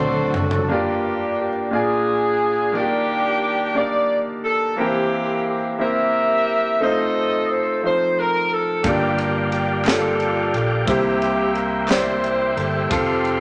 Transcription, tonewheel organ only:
0, 0, Header, 1, 2, 480
1, 0, Start_track
1, 0, Tempo, 678733
1, 489, Time_signature, 6, 3, 24, 8
1, 9477, End_track
2, 0, Start_track
2, 0, Title_t, "Tonewheel organ"
2, 0, Program_c, 0, 16
2, 0, Note_on_c, 0, 54, 66
2, 0, Note_on_c, 0, 60, 70
2, 0, Note_on_c, 0, 62, 64
2, 0, Note_on_c, 0, 69, 72
2, 473, Note_off_c, 0, 60, 0
2, 482, Note_off_c, 0, 62, 0
2, 482, Note_off_c, 0, 69, 0
2, 483, Note_off_c, 0, 54, 0
2, 6243, Note_on_c, 0, 74, 73
2, 6246, Note_on_c, 0, 67, 77
2, 6248, Note_on_c, 0, 79, 83
2, 6251, Note_on_c, 0, 77, 72
2, 7671, Note_off_c, 0, 74, 0
2, 7675, Note_off_c, 0, 77, 0
2, 7681, Note_on_c, 0, 72, 72
2, 7685, Note_on_c, 0, 76, 69
2, 9097, Note_off_c, 0, 67, 0
2, 9098, Note_off_c, 0, 79, 0
2, 9111, Note_off_c, 0, 76, 0
2, 9124, Note_on_c, 0, 77, 79
2, 9125, Note_on_c, 0, 69, 88
2, 9133, Note_on_c, 0, 84, 86
2, 9477, Note_off_c, 0, 69, 0
2, 9477, Note_off_c, 0, 72, 0
2, 9477, Note_off_c, 0, 77, 0
2, 9477, Note_off_c, 0, 84, 0
2, 9477, End_track
0, 0, End_of_file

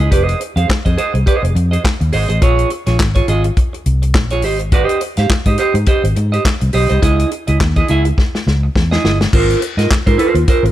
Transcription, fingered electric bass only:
0, 0, Header, 1, 3, 480
1, 0, Start_track
1, 0, Key_signature, -4, "major"
1, 0, Tempo, 575264
1, 100, Time_signature, 4, 2, 24, 8
1, 8943, End_track
2, 0, Start_track
2, 0, Title_t, "Fingered electric bass"
2, 0, Program_c, 0, 33
2, 467, Note_on_c, 0, 41, 87
2, 547, Note_off_c, 0, 41, 0
2, 716, Note_on_c, 0, 41, 87
2, 792, Note_off_c, 0, 41, 0
2, 950, Note_on_c, 0, 36, 78
2, 1029, Note_off_c, 0, 36, 0
2, 1190, Note_on_c, 0, 29, 89
2, 1269, Note_off_c, 0, 29, 0
2, 1294, Note_on_c, 0, 41, 87
2, 1471, Note_off_c, 0, 41, 0
2, 1675, Note_on_c, 0, 39, 88
2, 1752, Note_off_c, 0, 39, 0
2, 1777, Note_on_c, 0, 32, 88
2, 1876, Note_off_c, 0, 32, 0
2, 1909, Note_on_c, 0, 33, 82
2, 1988, Note_off_c, 0, 33, 0
2, 2020, Note_on_c, 0, 34, 86
2, 2195, Note_off_c, 0, 34, 0
2, 2394, Note_on_c, 0, 34, 82
2, 2498, Note_off_c, 0, 34, 0
2, 2498, Note_on_c, 0, 32, 94
2, 2674, Note_off_c, 0, 32, 0
2, 2738, Note_on_c, 0, 32, 90
2, 2914, Note_off_c, 0, 32, 0
2, 3221, Note_on_c, 0, 36, 82
2, 3457, Note_off_c, 0, 36, 0
2, 3457, Note_on_c, 0, 34, 99
2, 3700, Note_off_c, 0, 34, 0
2, 3700, Note_on_c, 0, 32, 110
2, 4051, Note_off_c, 0, 32, 0
2, 4319, Note_on_c, 0, 44, 81
2, 4395, Note_off_c, 0, 44, 0
2, 4556, Note_on_c, 0, 44, 92
2, 4633, Note_off_c, 0, 44, 0
2, 4791, Note_on_c, 0, 44, 94
2, 4870, Note_off_c, 0, 44, 0
2, 5037, Note_on_c, 0, 32, 96
2, 5114, Note_off_c, 0, 32, 0
2, 5143, Note_on_c, 0, 44, 98
2, 5318, Note_off_c, 0, 44, 0
2, 5522, Note_on_c, 0, 36, 80
2, 5597, Note_off_c, 0, 36, 0
2, 5624, Note_on_c, 0, 35, 88
2, 5721, Note_off_c, 0, 35, 0
2, 5761, Note_on_c, 0, 36, 83
2, 5837, Note_off_c, 0, 36, 0
2, 5861, Note_on_c, 0, 37, 106
2, 6037, Note_off_c, 0, 37, 0
2, 6242, Note_on_c, 0, 37, 81
2, 6317, Note_off_c, 0, 37, 0
2, 6345, Note_on_c, 0, 39, 99
2, 6520, Note_off_c, 0, 39, 0
2, 6588, Note_on_c, 0, 37, 91
2, 6761, Note_off_c, 0, 37, 0
2, 7064, Note_on_c, 0, 37, 74
2, 7239, Note_off_c, 0, 37, 0
2, 7304, Note_on_c, 0, 40, 88
2, 7479, Note_off_c, 0, 40, 0
2, 7543, Note_on_c, 0, 31, 89
2, 7719, Note_off_c, 0, 31, 0
2, 7787, Note_on_c, 0, 32, 107
2, 7961, Note_off_c, 0, 32, 0
2, 8154, Note_on_c, 0, 44, 86
2, 8233, Note_off_c, 0, 44, 0
2, 8403, Note_on_c, 0, 44, 109
2, 8478, Note_off_c, 0, 44, 0
2, 8632, Note_on_c, 0, 39, 97
2, 8711, Note_off_c, 0, 39, 0
2, 8869, Note_on_c, 0, 32, 109
2, 8943, Note_off_c, 0, 32, 0
2, 8943, End_track
3, 0, Start_track
3, 0, Title_t, "Muted fingered electric bass strokes"
3, 4421, Note_on_c, 9, 29, 48
3, 4504, Note_off_c, 9, 29, 0
3, 8943, End_track
0, 0, End_of_file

